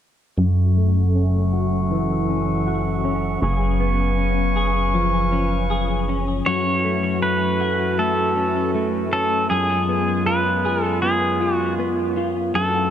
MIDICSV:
0, 0, Header, 1, 5, 480
1, 0, Start_track
1, 0, Key_signature, 3, "minor"
1, 0, Tempo, 759494
1, 243, Time_signature, 4, 2, 24, 8
1, 8155, End_track
2, 0, Start_track
2, 0, Title_t, "Pedal steel guitar"
2, 0, Program_c, 0, 26
2, 4084, Note_on_c, 0, 73, 91
2, 4564, Note_off_c, 0, 73, 0
2, 4566, Note_on_c, 0, 71, 76
2, 5050, Note_on_c, 0, 69, 63
2, 5059, Note_off_c, 0, 71, 0
2, 5501, Note_off_c, 0, 69, 0
2, 5769, Note_on_c, 0, 69, 78
2, 6001, Note_off_c, 0, 69, 0
2, 6003, Note_on_c, 0, 68, 89
2, 6485, Note_off_c, 0, 68, 0
2, 6487, Note_on_c, 0, 71, 81
2, 6848, Note_off_c, 0, 71, 0
2, 6848, Note_on_c, 0, 69, 81
2, 6962, Note_off_c, 0, 69, 0
2, 6965, Note_on_c, 0, 68, 71
2, 7300, Note_off_c, 0, 68, 0
2, 7300, Note_on_c, 0, 66, 71
2, 7419, Note_off_c, 0, 66, 0
2, 7933, Note_on_c, 0, 69, 89
2, 8155, Note_off_c, 0, 69, 0
2, 8155, End_track
3, 0, Start_track
3, 0, Title_t, "Woodwind section"
3, 0, Program_c, 1, 71
3, 240, Note_on_c, 1, 69, 60
3, 241, Note_on_c, 1, 85, 72
3, 243, Note_on_c, 1, 78, 53
3, 244, Note_on_c, 1, 76, 53
3, 2142, Note_off_c, 1, 69, 0
3, 2143, Note_off_c, 1, 85, 0
3, 2144, Note_off_c, 1, 76, 0
3, 2144, Note_off_c, 1, 78, 0
3, 2155, Note_on_c, 1, 71, 65
3, 2157, Note_on_c, 1, 77, 65
3, 2157, Note_on_c, 1, 85, 74
3, 2158, Note_on_c, 1, 80, 58
3, 3971, Note_off_c, 1, 71, 0
3, 3971, Note_off_c, 1, 77, 0
3, 3971, Note_off_c, 1, 80, 0
3, 3971, Note_off_c, 1, 85, 0
3, 4078, Note_on_c, 1, 66, 73
3, 4079, Note_on_c, 1, 52, 67
3, 4080, Note_on_c, 1, 61, 63
3, 4083, Note_on_c, 1, 57, 60
3, 5981, Note_off_c, 1, 66, 0
3, 5982, Note_off_c, 1, 52, 0
3, 5982, Note_off_c, 1, 61, 0
3, 5984, Note_off_c, 1, 57, 0
3, 6000, Note_on_c, 1, 49, 61
3, 6000, Note_on_c, 1, 56, 62
3, 6001, Note_on_c, 1, 59, 61
3, 6002, Note_on_c, 1, 42, 67
3, 6003, Note_on_c, 1, 65, 78
3, 7819, Note_off_c, 1, 49, 0
3, 7819, Note_off_c, 1, 56, 0
3, 7819, Note_off_c, 1, 59, 0
3, 7819, Note_off_c, 1, 65, 0
3, 7926, Note_on_c, 1, 66, 73
3, 7927, Note_on_c, 1, 62, 62
3, 7928, Note_on_c, 1, 52, 63
3, 7930, Note_on_c, 1, 57, 63
3, 8155, Note_off_c, 1, 42, 0
3, 8155, Note_off_c, 1, 52, 0
3, 8155, Note_off_c, 1, 57, 0
3, 8155, Note_off_c, 1, 62, 0
3, 8155, Note_off_c, 1, 66, 0
3, 8155, End_track
4, 0, Start_track
4, 0, Title_t, "Clean electric guitar"
4, 0, Program_c, 2, 27
4, 245, Note_on_c, 2, 42, 69
4, 248, Note_on_c, 2, 66, 56
4, 486, Note_on_c, 2, 57, 50
4, 724, Note_on_c, 2, 61, 45
4, 959, Note_off_c, 2, 66, 0
4, 966, Note_on_c, 2, 66, 56
4, 1205, Note_on_c, 2, 52, 55
4, 1444, Note_off_c, 2, 61, 0
4, 1446, Note_on_c, 2, 61, 49
4, 1678, Note_off_c, 2, 66, 0
4, 1686, Note_on_c, 2, 66, 55
4, 1919, Note_off_c, 2, 61, 0
4, 1921, Note_on_c, 2, 61, 50
4, 2155, Note_off_c, 2, 42, 0
4, 2162, Note_on_c, 2, 42, 73
4, 2164, Note_off_c, 2, 66, 0
4, 2167, Note_on_c, 2, 68, 62
4, 2212, Note_off_c, 2, 52, 0
4, 2212, Note_off_c, 2, 57, 0
4, 2400, Note_on_c, 2, 59, 57
4, 2419, Note_off_c, 2, 61, 0
4, 2640, Note_on_c, 2, 61, 48
4, 2873, Note_off_c, 2, 68, 0
4, 2881, Note_on_c, 2, 68, 55
4, 3121, Note_on_c, 2, 53, 54
4, 3358, Note_off_c, 2, 61, 0
4, 3361, Note_on_c, 2, 61, 52
4, 3595, Note_off_c, 2, 68, 0
4, 3603, Note_on_c, 2, 68, 52
4, 3841, Note_off_c, 2, 61, 0
4, 3844, Note_on_c, 2, 61, 51
4, 4076, Note_off_c, 2, 42, 0
4, 4084, Note_off_c, 2, 68, 0
4, 4084, Note_on_c, 2, 42, 74
4, 4087, Note_on_c, 2, 66, 63
4, 4129, Note_off_c, 2, 59, 0
4, 4130, Note_off_c, 2, 53, 0
4, 4325, Note_on_c, 2, 57, 53
4, 4562, Note_off_c, 2, 61, 0
4, 4564, Note_on_c, 2, 61, 52
4, 4797, Note_off_c, 2, 66, 0
4, 4804, Note_on_c, 2, 66, 57
4, 5039, Note_off_c, 2, 57, 0
4, 5046, Note_on_c, 2, 57, 56
4, 5281, Note_off_c, 2, 61, 0
4, 5283, Note_on_c, 2, 61, 53
4, 5519, Note_off_c, 2, 57, 0
4, 5526, Note_on_c, 2, 57, 52
4, 5763, Note_off_c, 2, 61, 0
4, 5766, Note_on_c, 2, 61, 53
4, 5996, Note_off_c, 2, 42, 0
4, 6003, Note_on_c, 2, 42, 72
4, 6004, Note_off_c, 2, 66, 0
4, 6009, Note_on_c, 2, 68, 64
4, 6053, Note_off_c, 2, 57, 0
4, 6245, Note_on_c, 2, 59, 53
4, 6264, Note_off_c, 2, 61, 0
4, 6489, Note_on_c, 2, 65, 50
4, 6721, Note_off_c, 2, 68, 0
4, 6729, Note_on_c, 2, 68, 62
4, 6961, Note_off_c, 2, 59, 0
4, 6968, Note_on_c, 2, 59, 54
4, 7200, Note_off_c, 2, 65, 0
4, 7208, Note_on_c, 2, 65, 55
4, 7440, Note_off_c, 2, 59, 0
4, 7448, Note_on_c, 2, 59, 55
4, 7679, Note_off_c, 2, 65, 0
4, 7687, Note_on_c, 2, 65, 49
4, 7918, Note_off_c, 2, 42, 0
4, 7925, Note_on_c, 2, 42, 70
4, 7926, Note_off_c, 2, 68, 0
4, 7931, Note_on_c, 2, 66, 61
4, 7973, Note_off_c, 2, 59, 0
4, 7973, Note_off_c, 2, 65, 0
4, 8155, Note_off_c, 2, 42, 0
4, 8155, Note_off_c, 2, 66, 0
4, 8155, End_track
5, 0, Start_track
5, 0, Title_t, "Analog synth bass"
5, 0, Program_c, 3, 38
5, 238, Note_on_c, 3, 30, 78
5, 2135, Note_off_c, 3, 30, 0
5, 2163, Note_on_c, 3, 30, 77
5, 4058, Note_off_c, 3, 30, 0
5, 8155, End_track
0, 0, End_of_file